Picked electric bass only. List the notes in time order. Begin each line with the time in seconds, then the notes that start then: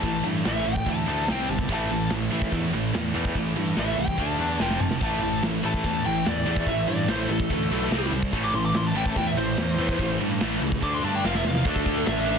0.03 A1
0.25 G2
0.46 A1
0.66 A1
0.86 D2
1.07 D2
1.29 C2
1.49 G1
1.69 A1
1.91 A1
2.11 A1
2.31 A1
2.52 E2
2.73 A1
2.94 E2
3.15 E2
3.35 A1
3.57 G2
3.77 A1
3.98 C2
4.18 D2
4.38 E2
4.60 F1
4.82 F1
5.01 A1
5.22 A1
5.43 A1
5.64 A1
5.84 E2
6.06 A1
6.26 E2
6.47 E2
6.66 A1
6.88 G2
7.09 A1
7.29 A1
7.50 D2
7.71 B1
7.91 C2
8.12 C2
8.33 A1
8.54 A1
8.74 A1
8.95 A1
9.16 E2
9.37 A1
9.58 E2
9.78 E2
9.99 A1
10.21 G2
10.41 A1
10.62 C#2
10.82 D2
11.03 G2
11.24 F1
11.45 E2
11.65 D2
12.07 A1